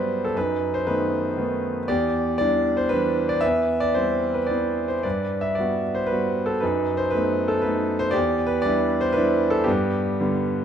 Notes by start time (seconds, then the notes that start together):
Already playing: G2 F#3 G3 B3 B4 C5 D5 E5
0.25 A4
0.35 F#2 D#4 B4
0.74 C5
0.86 D#3 A3 B3 D#4 B4
1.37 D#3 A3 B3
1.88 E2 G4 D5
2.38 E3 G3 D4 D5
2.77 C5
2.89 E3 G3 D4 B4
3.29 D5
3.41 E2 B4 E5
3.80 D5
3.94 E3 G3 C4 C5
4.34 B4
4.46 D5
4.51 E3 B3 C4
4.88 C5
5.03 G2 B4 D5
5.41 E5
5.55 G3 D5
5.60 B3 F#4
5.94 C5
6.07 B4
6.12 G3 B3 F#4
6.46 A4
6.60 F#2 D#4 B4
6.97 C5
7.11 A3 B3 B4
7.15 D#4
7.48 A4
7.62 A3 B3 D#4 B4
7.99 C5
8.11 G4 D5
8.16 E2
8.47 B4
8.62 G3 D4 D5
8.66 E4
9.01 C5
9.13 B4
9.17 G3 D4 E4
9.50 A4
9.64 B3 G4
9.68 G2
10.20 D3 G3 B3